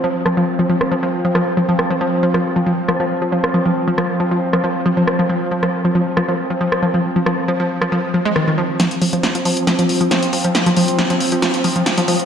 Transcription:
0.00 8.78 F3 medium
0.00 0.08 F3 medium
0.00 8.78 C4 medium
0.26 0.29 F3 medium
0.26 cross-stick medium
0.37 0.41 F3 medium
0.59 0.62 F3 medium
0.69 0.74 F3 medium
0.81 cross-stick medium
0.91 0.94 F3 medium
1.03 1.07 F3 medium
1.25 1.27 F3 medium
1.35 1.40 F3 medium
1.35 cross-stick medium
1.57 1.60 F3 medium
1.69 1.73 F3 medium
1.79 cross-stick medium
1.91 1.93 F3 medium
2.01 2.06 F3 medium
2.23 2.26 F3 medium
2.34 2.39 F3 medium
2.34 cross-stick medium
2.56 2.59 F3 medium
2.67 2.71 F3 medium
2.88 2.91 F3 medium
2.88 cross-stick medium
3.00 3.04 F3 medium
3.22 3.24 F3 medium
3.32 3.37 F3 medium
3.44 cross-stick medium
3.54 3.57 F3 medium
3.66 3.70 F3 medium
3.88 3.90 F3 medium
3.98 4.03 F3 medium
3.98 cross-stick medium
4.20 4.23 F3 medium
4.31 4.36 F3 medium
4.53 4.56 F3 medium
4.53 cross-stick medium
4.64 4.68 F3 medium
4.86 4.88 F3 medium
4.97 5.01 F3 medium
5.07 cross-stick medium
5.19 5.22 F3 medium
5.29 5.34 F3 medium
5.51 5.54 F3 medium
5.63 5.67 F3 medium
5.63 cross-stick medium
5.85 5.87 F3 medium
5.95 6.00 F3 medium
6.17 6.20 F3 medium
6.17 cross-stick medium
6.29 6.33 F3 medium
6.50 6.53 F3 medium
6.61 6.65 F3 medium
6.72 cross-stick medium
6.83 6.85 F3 medium
6.94 6.98 F3 medium
7.16 7.19 F3 medium
7.26 7.31 F3 medium
7.26 cross-stick medium
7.48 7.51 F3 medium
7.60 7.64 F3 medium
7.82 7.84 F3 medium
7.82 cross-stick medium
7.92 7.97 F3 medium
8.14 8.19 F3 medium
8.25 8.28 G#3 loud
8.36 8.41 D#3 medium
8.36 cross-stick medium
8.47 8.50 D#3 medium
8.58 8.62 F3 medium
8.80 12.25 F3 medium
8.80 8.84 F3 medium
8.80 12.25 C4 medium
8.80 snare soft
8.80 closed hi-hat medium
8.91 closed hi-hat medium
9.02 9.04 F3 medium
9.02 open hi-hat loud
9.13 9.17 F3 medium
9.13 closed hi-hat medium
9.23 snare soft
9.23 closed hi-hat medium
9.35 9.37 F3 medium
9.35 closed hi-hat medium
9.45 9.50 F3 medium
9.45 open hi-hat loud
9.57 closed hi-hat medium
9.67 9.70 F3 medium
9.67 snare medium
9.67 closed hi-hat medium
9.79 9.83 F3 medium
9.79 closed hi-hat medium
9.89 open hi-hat loud
10.01 10.03 F3 medium
10.01 closed hi-hat medium
10.11 10.16 F3 medium
10.11 snare medium
10.11 closed hi-hat medium
10.23 closed hi-hat medium
10.33 10.36 F3 medium
10.33 open hi-hat loud
10.44 10.49 F3 medium
10.44 closed hi-hat medium
10.55 snare medium
10.55 closed hi-hat medium
10.66 10.69 F3 medium
10.66 closed hi-hat medium
10.77 10.81 F3 medium
10.77 open hi-hat loud
10.88 closed hi-hat medium
10.99 11.01 F3 medium
10.99 snare medium
10.99 closed hi-hat medium
11.10 11.14 F3 medium
11.10 closed hi-hat medium
11.20 open hi-hat loud
11.32 11.35 F3 medium
11.32 closed hi-hat medium
11.42 11.47 F3 medium
11.42 snare medium
11.42 closed hi-hat medium
11.54 closed hi-hat medium
11.64 11.67 F3 medium
11.64 open hi-hat loud
11.76 11.80 F3 medium
11.76 closed hi-hat medium
11.86 snare medium
11.86 closed hi-hat medium
11.98 12.00 F3 medium
11.98 closed hi-hat medium
12.08 12.13 F3 medium
12.08 open hi-hat loud
12.19 closed hi-hat medium

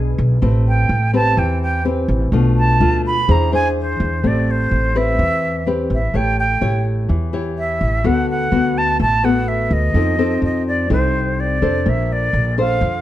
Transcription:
0.00 0.14 B1 medium
0.00 0.39 B2 medium
0.00 0.38 D4 medium
0.00 0.38 G#4 medium
0.00 0.38 B4 medium
0.18 0.40 B1 loud
0.42 0.86 A1 medium
0.42 1.35 A3 medium
0.42 0.89 C4 medium
0.42 0.89 G4 medium
0.42 0.90 B4 medium
0.68 1.11 G5 medium
0.89 1.34 A1 medium
1.13 1.81 C4 medium
1.13 1.81 G4 medium
1.13 1.81 B4 medium
1.13 1.40 A5 loud
1.37 2.05 E2 medium
1.37 2.30 E3 medium
1.37 1.62 G5 medium
1.62 1.84 G5 medium
1.85 2.31 C4 medium
1.85 2.31 G4 medium
1.85 2.31 B4 medium
2.08 2.31 A1 medium
2.32 2.77 B1 medium
2.32 3.26 B2 medium
2.32 2.76 A3 medium
2.32 2.77 D4 medium
2.32 2.77 F4 medium
2.58 3.02 A5 medium
2.80 3.25 D2 medium
2.80 3.12 A3 medium
2.80 3.12 D4 medium
2.80 3.13 F4 medium
3.07 3.33 B5 loud
3.28 3.96 E2 loud
3.28 4.21 E3 medium
3.28 3.48 D4 medium
3.28 3.48 G#4 medium
3.28 3.48 C5 medium
3.28 3.54 A#5 medium
3.52 4.20 D4 medium
3.52 4.20 G#4 medium
3.52 4.20 C5 medium
3.52 3.68 G#5 loud
3.80 4.29 C5 medium
4.00 4.22 E2 medium
4.23 4.68 A1 medium
4.23 5.16 A3 medium
4.23 4.91 C4 medium
4.23 4.91 G4 medium
4.23 4.52 D5 medium
4.51 4.99 C5 medium
4.71 5.15 A1 medium
4.95 5.63 C4 medium
4.95 5.63 G4 medium
4.95 5.63 B4 medium
4.95 5.67 E5 loud
5.19 5.86 E2 medium
5.19 6.12 E3 medium
5.67 5.98 C4 medium
5.67 5.99 G4 medium
5.67 5.99 B4 medium
5.90 6.12 A1 medium
5.90 6.18 E5 medium
6.14 6.58 A1 medium
6.14 7.07 A3 medium
6.14 6.45 E4 medium
6.14 6.45 G4 soft
6.14 6.45 C#5 medium
6.14 6.39 G5 medium
6.40 6.83 G5 medium
6.61 7.06 A1 medium
6.61 7.29 E4 medium
6.61 7.29 G4 medium
6.61 7.29 C#5 medium
7.09 7.77 E2 medium
7.09 8.02 E3 medium
7.33 8.01 E4 medium
7.33 8.01 G4 medium
7.33 8.01 C#5 medium
7.59 8.08 E5 medium
7.81 8.03 A1 medium
8.04 8.49 D2 medium
8.04 8.97 D3 medium
8.04 8.48 B3 medium
8.04 8.48 F#4 medium
8.04 8.48 A4 medium
8.04 8.29 F#5 loud
8.30 8.79 F#5 loud
8.51 8.96 D2 medium
8.51 8.99 B3 medium
8.51 8.99 F#4 medium
8.51 9.00 A4 medium
8.78 9.01 A5 loud
8.99 9.67 A1 medium
8.99 9.93 A3 medium
8.99 9.26 A5 loud
9.23 9.93 B3 medium
9.23 9.93 F#4 medium
9.23 9.93 A4 medium
9.23 9.50 F#5 loud
9.48 9.75 E5 medium
9.71 9.93 D2 medium
9.71 10.44 D#5 medium
9.94 10.39 F2 medium
9.94 10.88 F3 medium
9.94 10.15 C4 medium
9.94 10.15 D#4 medium
9.94 10.15 A4 medium
10.18 10.86 C4 medium
10.18 10.87 D#4 medium
10.18 10.87 A4 medium
10.42 10.87 F2 medium
10.42 10.66 D#5 medium
10.68 10.89 D5 medium
10.90 11.58 C2 medium
10.90 11.83 C3 medium
10.90 11.58 C4 medium
10.90 11.58 D#4 medium
10.90 11.58 A4 medium
10.90 11.42 C5 medium
11.40 11.91 D5 medium
11.62 11.84 F2 medium
11.62 12.30 D4 medium
11.62 12.30 A4 medium
11.62 12.30 C5 medium
11.85 12.30 A#1 medium
11.85 12.79 A#3 medium
11.85 12.14 E5 medium
12.12 12.59 D5 medium
12.33 12.78 A#1 medium
12.58 13.01 D4 medium
12.58 13.01 A4 medium
12.58 13.01 C5 medium
12.58 13.00 F5 medium
12.81 13.01 F2 medium
12.81 13.01 F3 medium

